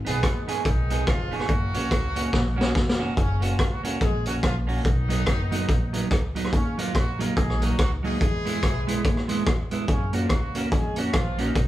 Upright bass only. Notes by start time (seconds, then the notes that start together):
0.07 B1
0.24 D#2
0.66 B1
1.08 F1
1.49 F#1
1.75 A#1
1.92 C#2
2.34 A#1
2.75 F1
3.17 F#1
3.60 C#2
4.01 A#1
4.44 A#1
4.85 B1
5.27 F#1
5.69 A#1
6.11 C#2
6.53 D#2
6.95 A#1
7.38 A#1
7.79 C#2
8.22 E2
8.63 B1
9.05 D#2
9.47 E2
9.89 F#2
10.30 C#2
10.72 F2
11.14 A#1
11.56 B1